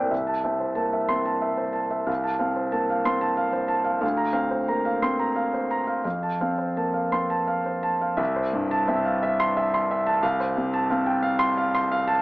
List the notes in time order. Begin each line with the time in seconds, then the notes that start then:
Already playing: G2 A2 A#3 C4 C5 D5 G5
0.11 C2 E5
0.27 A5
0.44 C4 E5
0.60 C5
0.75 A#3 A5
0.93 E5
1.08 C4 C6
1.25 A5
1.42 E5
1.57 C5
1.73 A5
1.90 E5
2.06 C2 F5
2.24 A5
2.39 C4 F5
2.56 C5
2.72 A#3 A5
2.90 F5
3.05 C4 C6
3.21 A5
3.37 F5
3.53 C5
3.68 A5
3.84 F5
4.01 D2 F5
4.17 A#5
4.33 C4 F5
4.51 C5
4.68 A#3 A#5
4.85 F5
5.02 C4 C6
5.19 A#5
5.36 F5
5.54 C5
5.71 A#5
5.87 F5
6.04 F2 F5
6.23 A5
6.41 C4 F5
6.58 C5
6.77 A#3 A5
6.94 F5
7.12 C4 C6
7.30 A5
7.48 F5
7.66 C5
7.83 A5
8.01 F5
8.17 C2 E5
8.36 C5
8.53 G2
8.71 A5
8.88 C4 E5
9.05 F5
9.23 E5
9.40 C6
9.57 E5
9.74 C6
9.91 E5
10.06 A5
10.23 C2 F5
10.40 C5
10.57 C3
10.74 A5
10.90 C4 F5
11.06 G5
11.23 F5
11.39 C6
11.58 F5
11.75 C6
11.92 F5
12.08 A5